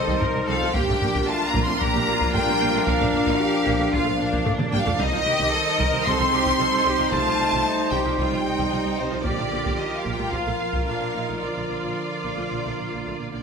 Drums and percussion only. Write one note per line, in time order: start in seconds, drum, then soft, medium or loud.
0.08 taiko medium
0.21 taiko low-mid medium
0.75 taiko medium
0.89 taiko low-mid soft
1.02 taiko low-mid medium
1.15 taiko medium
1.55 taiko medium
1.81 taiko medium
2.21 taiko medium
2.34 taiko low-mid medium
2.87 taiko medium
3.00 taiko low-mid soft
3.14 taiko low-mid soft
3.27 taiko medium
3.66 taiko medium
3.93 taiko medium
4.33 taiko medium
4.46 taiko low-mid medium
4.59 taiko mid medium
4.73 taiko low-mid medium
4.86 taiko low medium
4.99 taiko medium
5.40 taiko medium
5.80 taiko medium
6.07 taiko medium
6.46 taiko medium
7.12 taiko medium
7.52 taiko medium
7.92 taiko medium
8.18 taiko medium
8.59 taiko medium
9.25 taiko medium
9.65 taiko medium
10.06 taiko medium
10.32 taiko medium
10.73 taiko medium